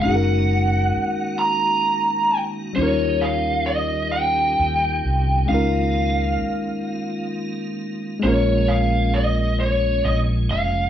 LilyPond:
<<
  \new Staff \with { instrumentName = "Lead electric guitar" } { \time 6/8 \key bes \minor \tempo 4. = 44 ges''4. bes''4 r8 | des''8 f''8 ees''8 g''4. | f''2 r4 | des''8 f''8 ees''8 des''8 ees''8 f''8 | }
  \new Staff \with { instrumentName = "Tine electric piano" } { \time 6/8 \key bes \minor <aes des' ees' ges' aes' bes'>2. | <g des' ees' f' bes'>2. | <aes des' ees' f' bes'>2. | <aes bes des' f' bes'>2. | }
  \new Staff \with { instrumentName = "Tonewheel organ" } { \time 6/8 \key bes \minor <bes ges'>2. | <des' g'>2. | <bes f'>2. | <aes des'>2. | }
  \new Staff \with { instrumentName = "Tonewheel organ" } { \clef bass \time 6/8 \key bes \minor ees2. | ees2.~ | ees2. | des2. | }
  \new Staff \with { instrumentName = "Fretless electric bass" } { \clef bass \time 6/8 \key bes \minor ges,,4 r2 | ees,2 ees,8 c,8 | des,4 r2 | bes,,2 bes,,8 f,,8 | }
>>